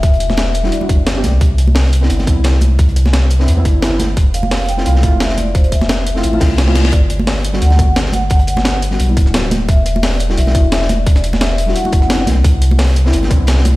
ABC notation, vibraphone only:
X:1
M:4/4
L:1/16
Q:"Swing 16ths" 1/4=174
K:Clyd
V:1 name="Vibraphone"
e8 d6 z2 | z16 | z16 | z2 =f4 g2 f4 e2 d2 |
c2 e8 z6 | d8 f4 z2 f2- | f6 z8 z2 | e4 d4 e4 e d3 |
d4 e4 f6 z2 | z16 |]